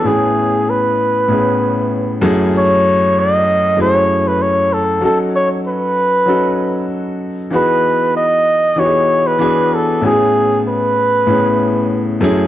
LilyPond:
<<
  \new Staff \with { instrumentName = "Flugelhorn" } { \time 4/4 \key a \lydian \tempo 4 = 96 gis'4 b'2~ b'8 r8 | cis''4 dis''4 cis''8. b'16 cis''8 a'8 | a'8 cis''8 b'2 r4 | b'4 dis''4 cis''8. b'8. a'8 |
gis'4 b'2~ b'8 r8 | }
  \new Staff \with { instrumentName = "Grand piano" } { \time 4/4 \key a \lydian <a, b cis' e' gis'>4. r8 <a, b cis' e' gis'>4. <fis, a cis' e' gis'>8~ | <fis, a cis' e' gis'>4 r4 <fis, a cis' e' gis'>4. r8 | <fis cis' dis' fis' a'>4. r8 <fis cis' dis' fis' a'>4. r8 | <e b dis' fis' gis'>4. r8 <e b dis' fis' g' gis'>4 <e b d' fis' gis'>4 |
<a, b cis' e' fis' gis'>4. r8 <a, b cis' e' gis'>4. <fis, a cis' e' gis'>8 | }
>>